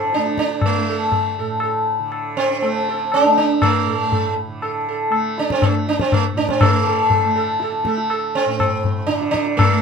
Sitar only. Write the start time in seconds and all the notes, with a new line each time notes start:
Already playing: C4 A4
0.14 D4
0.39 D4
0.66 A3
0.90 A4
1.39 A4
1.63 A4
2.37 C4
2.62 A4
2.89 A4
3.14 D4
3.37 D4
3.63 A3
3.87 A4
4.13 A4
4.63 A4
4.89 A4
5.39 D4
5.52 C4
5.64 A3
5.89 D4
6.01 C4
6.14 A3
6.37 D4
6.50 C4
6.62 A3 A4
6.87 A4
7.12 A4
7.36 A4
7.62 A4
7.87 A4
8.11 A4
8.35 C4
9.06 D4
9.31 D4
9.57 A3